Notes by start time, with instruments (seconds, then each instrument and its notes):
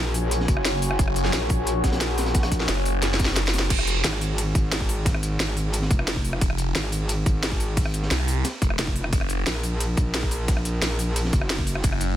Already playing: wobble bass A#1, ambient pad F#4 C#5 G#5
0.14 closed hi-hat, open hi-hat
0.31 closed hi-hat
0.40 snare
0.48 wobble bass F#1, kick, closed hi-hat
0.57 cross-stick
0.65 snare, closed hi-hat
0.82 closed hi-hat, open hi-hat
0.91 cross-stick
0.99 detuned saw bass F#1, kick, closed hi-hat
1.08 cross-stick
1.16 closed hi-hat
1.25 snare
1.33 wobble bass A#1, snare, closed hi-hat
1.42 cross-stick
1.49 kick, closed hi-hat, open hi-hat
1.67 closed hi-hat
1.84 wobble bass A#1, kick, snare, closed hi-hat
1.92 snare, closed hi-hat
2.01 snare, closed hi-hat
2.18 snare, closed hi-hat, open hi-hat
2.25 snare, closed hi-hat
2.34 kick, snare, closed hi-hat
2.43 cross-stick, snare, closed hi-hat
2.52 kick, closed hi-hat
2.60 snare
2.68 detuned saw bass F#1, snare, closed hi-hat
2.77 cross-stick
2.85 closed hi-hat, open hi-hat
3.02 snare, closed hi-hat
3.14 snare
3.19 kick, snare, closed hi-hat
3.23 snare, closed hi-hat
3.28 snare, closed hi-hat
3.32 snare, closed hi-hat
3.36 snare, closed hi-hat
3.46 snare, closed hi-hat
3.53 snare, closed hi-hat, open hi-hat
3.59 snare, closed hi-hat
3.62 snare
3.70 detuned saw bass F1, kick, closed hi-hat, ride, crash
3.79 cross-stick
3.87 closed hi-hat
4.04 wobble bass G#1, snare, closed hi-hat, ride
4.13 cross-stick
4.21 closed hi-hat, open hi-hat
4.38 closed hi-hat, ride
4.55 wobble bass G#1, kick, closed hi-hat
4.72 snare, closed hi-hat, ride
4.80 kick
4.89 closed hi-hat, open hi-hat
5.05 kick, snare, closed hi-hat, ride
5.14 cross-stick
5.23 closed hi-hat
5.40 wobble bass G#1, snare, closed hi-hat, ride
5.48 cross-stick
5.57 closed hi-hat, open hi-hat
5.73 closed hi-hat, ride
5.82 snare
5.90 wobble bass F1, kick, closed hi-hat
5.99 cross-stick
6.08 snare, closed hi-hat, ride
6.16 kick
6.25 closed hi-hat, open hi-hat
6.33 cross-stick
6.41 detuned saw bass F1, kick, closed hi-hat, ride
6.50 cross-stick
6.58 closed hi-hat
6.75 wobble bass G#1, snare, closed hi-hat, ride
6.84 cross-stick
6.92 closed hi-hat, open hi-hat
7.09 closed hi-hat, ride
7.26 wobble bass G#1, kick, closed hi-hat
7.43 snare, closed hi-hat, ride
7.52 kick
7.60 closed hi-hat, open hi-hat
7.77 kick, closed hi-hat, open hi-hat, ride
7.85 cross-stick
7.94 closed hi-hat
8.03 snare
8.11 detuned saw bass C2, snare, closed hi-hat, ride
8.19 cross-stick
8.28 closed hi-hat, open hi-hat
8.44 snare, closed hi-hat, ride
8.62 detuned saw bass F1, kick, closed hi-hat
8.70 cross-stick
8.79 wobble bass F1, snare, closed hi-hat, ride
8.87 kick
8.96 open hi-hat
9.04 cross-stick
9.13 detuned saw bass F#1, kick, closed hi-hat, ride
9.21 cross-stick
9.29 closed hi-hat
9.46 wobble bass A#1, snare, closed hi-hat, ride
9.55 cross-stick
9.63 closed hi-hat, open hi-hat
9.80 closed hi-hat, ride
9.97 wobble bass A#1, kick, closed hi-hat
10.14 snare, closed hi-hat, ride
10.23 kick
10.31 closed hi-hat, open hi-hat
10.48 kick, snare, closed hi-hat, ride
10.57 cross-stick
10.65 closed hi-hat
10.82 wobble bass A#1, snare, closed hi-hat, ride
10.91 cross-stick
10.99 closed hi-hat, open hi-hat
11.16 closed hi-hat, ride
11.25 snare
11.33 wobble bass F#1, kick, closed hi-hat
11.41 cross-stick
11.50 snare, closed hi-hat, ride
11.58 kick
11.67 closed hi-hat, open hi-hat
11.75 cross-stick
11.83 detuned saw bass F#1, kick, closed hi-hat, ride
11.92 cross-stick
12.00 closed hi-hat